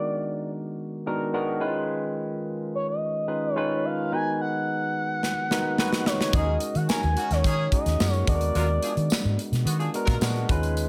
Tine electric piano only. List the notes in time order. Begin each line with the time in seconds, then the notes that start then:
Already playing: D#3 G#3 B3 D4 F#4 A#4
1.06 D#3 G#3 B3 D4 F#4 A#4
1.33 D#3 G#3 B3 D4 F#4 A#4
1.60 D#3 G#3 C#4 D#4 E4 B4
1.67 F4
3.28 D#3 G#3 C#4 D#4 F4 B4
3.56 D#3 G#3 C#4 D#4 F4 B4
4.12 D#3 G#3 B3 D#4 F#4 B4
5.51 D#3 G#3 B3 D#4 F#4 B4
5.79 D#3 G#3 B3 D#4 F#4 B4
6.34 G#3 C#4 D#4 F#4 G#4
6.41 A#4
7.72 G#3 C#4 D#4 F#4 G#4
8.00 G#3 C#4 D#4 F#4 A#4
8.27 G#3 B3 D4 F#4 G#4
8.35 A#4
9.94 G#3 B3 D4 F#4 A#4
10.22 G#3 B3 D4 F#4 A#4
10.50 G#3 C#4 D#4 F4 B4